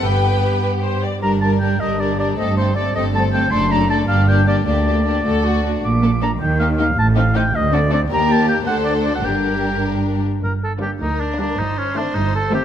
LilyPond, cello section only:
\new Staff \with { instrumentName = "Cello section" } { \clef bass \time 6/8 \key g \major \tempo 4. = 105 g,2~ g,8 r8 | \key g \minor g,4. g,4. | g,4. g,4. | fis,4. g,4. |
d,4. d,4. | bes,4. ees4. | a,4. d,4. | ees,4. d,4. |
g,2~ g,8 r8 | g,4. d,4. | g,4. g,4. | }